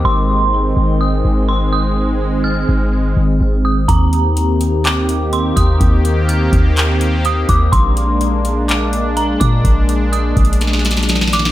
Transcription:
<<
  \new Staff \with { instrumentName = "Synth bell" } { \time 4/4 \key ees \major \tempo 4 = 125 c'''2 ees'''4 c'''8 ees'''8 | r4 f'''4 r4. ees'''8 | bes''2 d'''4 c'''8 ees'''8 | r4 f'''4 r4 ees'''8 d'''8 |
c'''2 d'''4 bes''8 d'''8 | r4 ees'''4 r4. d'''8 | }
  \new Staff \with { instrumentName = "Analog synth pad" } { \time 4/4 \key ees \major << { ees1~ | ees1 | <ees bes g'>1~ | <ees bes g'>1 |
<aes d'>1~ | <aes d'>1 | } \\ { <aes c'>1~ | <aes c'>1~ | <aes c'>1~ | <aes c'>1 |
r1 | r1 | } >> }
  \new Staff \with { instrumentName = "808-style bass" } { \clef bass \time 4/4 \key ees \major aes,,4. aes,,4 aes,,4.~ | aes,,4. aes,,4 aes,,8 aes,,4 | ees,2.~ ees,8 ees,8 | ees,4. ees,2 ees,8 |
bes,,2.~ bes,,8 bes,8 | bes,,4. bes,,2~ bes,,8 | }
  \new DrumStaff \with { instrumentName = "Drums" } \drummode { \time 4/4 r4 r4 r4 r4 | r4 r4 r4 r4 | <hh bd>8 hh8 hh8 hh8 <hc hh>8 hh8 hh8 <hh bd>8 | <hh bd>8 hh8 hh8 <hh bd>8 <hc hh>8 hh8 hh8 <hh bd>8 |
<hh bd>8 hh8 hh8 hh8 <hc hh>8 hh8 hh8 <hh bd>8 | <hh bd>8 hh8 \tuplet 3/2 { hh16 r16 r16 <hh bd>16 hh16 hh16 } <hh sn>32 sn32 sn32 sn32 <hh sn>32 <hh sn>32 <hh sn>32 <hh sn>32 <hh sn>32 sn32 sn32 sn32 <hh sn>32 sn32 sn16 | }
>>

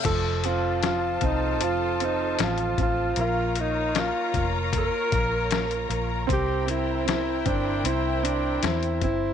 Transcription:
<<
  \new Staff \with { instrumentName = "String section" } { \time 4/4 \key f \phrygian \tempo 4 = 77 << { <f' c'' a''>1 | <f' des'' bes''>1 | <e' c'' g''>1 | } \\ { a'1 | bes'1~ | bes'1 | } >> }
  \new Staff \with { instrumentName = "Alto saxophone" } { \time 4/4 \key f \phrygian a'8 f'8 f'8 ees'8 f'8 ees'8 f'8 f'8 | f'8 ees'8 f'8 r8 bes'4. r8 | g'8 e'8 e'8 d'8 e'8 d'8 e'8 e'8 | }
  \new Staff \with { instrumentName = "Grand piano" } { \time 4/4 \key f \phrygian f8 c'8 f8 c'8 f8 c'8 f8 c'8 | bes8 bes8 bes8 bes8 bes8 bes8 bes8 bes8 | c'8 c'8 c'8 c'8 c'8 c'8 c'8 c'8 | }
  \new Staff \with { instrumentName = "Fingered electric bass" } { \clef bass \time 4/4 \key f \phrygian f,,4. c,8 f,,4 a,,8 a,,8 | bes,,4~ bes,,16 r16 f,,8. r16 bes,,4 bes,,8 | c,4. g,,8 c,4 e,8 g,,8 | }
  \new DrumStaff \with { instrumentName = "Drums" } \drummode { \time 4/4 <cymc hh bd>8 hh8 <hh sn>8 <hh bd>8 hh8 hh8 <hh sn>16 hh16 <hh bd>8 | hh8 hh8 <hh sn>8 <hh bd>8 <hh bd>8 <hh bd>8 <hh sn>16 hh16 hh8 | <hh bd>8 hh8 <hh sn>8 <hh bd>8 hh8 hh8 <hh sn>16 hh16 <hh bd>8 | }
>>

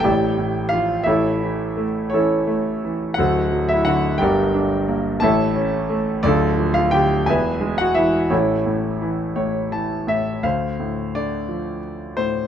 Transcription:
<<
  \new Staff \with { instrumentName = "Grand piano" } { \time 6/8 \key a \phrygian \tempo 4. = 58 << { <g' d''>4 f'8 <e' a' cis''>4 r8 | <cis' e' a'>4. <fis' a' c''>8. e'16 fis'8 | <g' bes' d''>4. <a' cis'' e''>4 r8 | <d' f' a'>8. f'16 g'8 <gis' b' e''>8. fis'16 e'8 |
<cis' e' a'>2 a''4 | \key d \minor c''4. r4. | } \\ { g''4 f''8 e''4 r8 | cis''4. fis''8. e''16 fis''8 | g''4. a''4 r8 | d''8. f''16 g''8 gis''8. fis''16 e''8 |
cis''4. cis''4 e''8 | f''4 d''4 r8 c''8 | } >> }
  \new Staff \with { instrumentName = "Grand piano" } { \clef bass \time 6/8 \key a \phrygian <a,, a,>8 a,8 f8 <a,, a,>8 e8 a8 | e8 a8 e8 <d,, d,>8 fis8 d8 | <g,, g,>8 d'8 bes8 <a,, a,>8 cis'8 a8 | <d,, d,>8 f8 d8 <e,, e,>8 gis8 e8 |
<a,, a,>8 a,8 e8 a,8 e8 a,8 | \key d \minor d,8 a,8 d8 f4 a,8 | }
>>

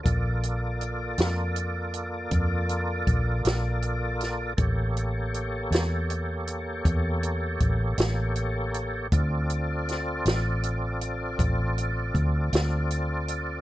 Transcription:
<<
  \new Staff \with { instrumentName = "Tonewheel organ" } { \time 12/8 \key d \minor \tempo 4. = 53 <bes f' a' d''>1. | <bes g' a' cis''>1. | <c' f' a' d''>1. | }
  \new Staff \with { instrumentName = "Fingered electric bass" } { \clef bass \time 12/8 \key d \minor bes,,4. f,4. f,4 bes,,8 bes,,4. | a,,4. e,4. e,4 a,,8 a,,4. | d,4. a,,4. a,,4 d,8 d,4. | }
  \new DrumStaff \with { instrumentName = "Drums" } \drummode { \time 12/8 <hh bd>8 hh8 hh8 <hh sn>8 hh8 hh8 <hh bd>8 hh8 <hh bd>8 <hh sn>8 hh8 <hh sn>8 | <hh bd>8 hh8 hh8 <hh sn>8 hh8 hh8 <hh bd>8 hh8 <hh bd>8 <hh sn>8 hh8 hh8 | <hh bd>8 hh8 <hh sn>8 <hh sn>8 hh8 hh8 <hh bd>8 hh8 <hh bd>8 <hh sn>8 hh8 hh8 | }
>>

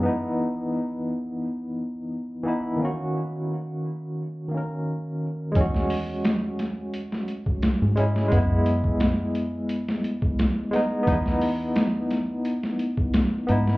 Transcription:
<<
  \new Staff \with { instrumentName = "Tine electric piano" } { \time 4/4 \key fes \lydian \tempo 4 = 87 <e b dis' e'>2~ <e b dis' e'>8 r4 <e b dis' e'>8 | <ees bes des' ges'>2~ <ees bes des' ges'>8 <ees bes des' bes'>8 r4 | <gis cis' ges'>2~ <gis cis' ges'>8 r4 <gis cis' e'>8 | <aes ces' fes'>2~ <aes ces' fes'>8 r4 <aes ces' ees'>8 |
<b dis' e'>2~ <b dis' e'>8 r4 <b dis' e'>8 | }
  \new Staff \with { instrumentName = "Fingered electric bass" } { \clef bass \time 4/4 \key fes \lydian r1 | r1 | e,2.~ e,16 gis,8. | ges,2.~ ges,16 r8. |
e,2.~ e,16 r16 gis,8 | }
  \new DrumStaff \with { instrumentName = "Drums" } \drummode { \time 4/4 r4 r4 r4 r4 | r4 r4 r4 r4 | <hh bd>16 sn16 hho8 <hh sn>8 <hh sn>8 hh16 sn16 hh16 bd16 <hh sn>8 hh16 sn16 | <hh bd>8 hh16 bd16 <hh sn>8 hh8 hh16 sn16 hh16 bd16 <hh sn>8 <hh sn>8 |
<hh bd>16 sn16 hho8 <hh sn>8 <hh sn>8 hh16 sn16 hh16 bd16 <hh sn>8 hh16 sn16 | }
>>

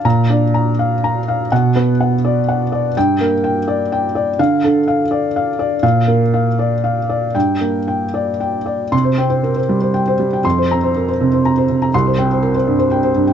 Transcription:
<<
  \new Staff \with { instrumentName = "Felt piano" } { \time 3/4 \key g \minor \tempo 4 = 123 << { bes''4 r2 | fis''4 r2 | g''4 r2 | f''4 r2 |
f''4 r2 | g''4 r2 | c'''8 r2 r8 | c'''8 r2 r8 |
c'''8 r2 r8 | } \\ { r8 d''8 bes''8 f''8 bes''8 f''8 | r8 b'8 fis''8 d''8 fis''8 d''8 | r8 bes'8 g''8 d''8 g''8 d''8 | r8 a'8 f''8 d''8 f''8 d''8 |
r8 bes'8 f''8 d''8 f''8 d''8 | r8 bes'8 g''8 d''8 g''8 d''8 | r16 c''16 g''16 c''16 bes'16 c''16 g16 c''16 g''16 c''16 g16 g''16 | r16 c''16 bes''16 c''16 bes'16 c''16 c16 c''16 bes''16 c''16 c16 bes''16 |
r16 c''16 g''16 c''16 bes'16 c''16 g,16 c''16 g''16 c''16 g,16 g''16 | } >> }
  \new Staff \with { instrumentName = "Felt piano" } { \clef bass \time 3/4 \key g \minor bes,8 d'4 r4. | b,8 b4 r4. | g,8 bes4 r4. | d8 d'4 r4. |
bes,8 bes4 r4. | g,8 bes4 r4. | c8 c'4 r4. | f,8 c'4 r4. |
c,8 c'4 r4. | }
>>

